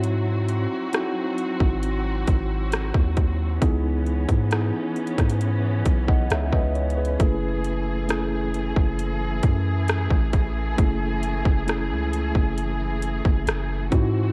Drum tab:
HH |x-----------x-----------x-----------x-----------x-----------x-----------x-----------x-----------|x-----------x-----x-----x-----------x--x--x--x--x-----------x-----------x-----------x---x---x---|x-----------x-----------x-----------x-----------x-----------x-----------x-----------x-----------|x-----------x-----------x-----------x-----------x-----------x-----------x-----------x-----------|
SD |------------------------r-----------------------------------------------r-----------------------|------------------------r-----------------r-----------------------------r-----------------------|------------------------r-----------------------------------------------r-----------------------|------------------------r-----------------------------------------------r-----------------------|
BD |------------------------------------------o-----------------o-----------------o-----o-----------|o-----------------o-----------------------o-----------------o-----o-----------o-----------------|o-----------------------------------------o-----------------o-----------------o-----o-----------|o-----------------o-----------------------o-----------------------o-----------------o-----------|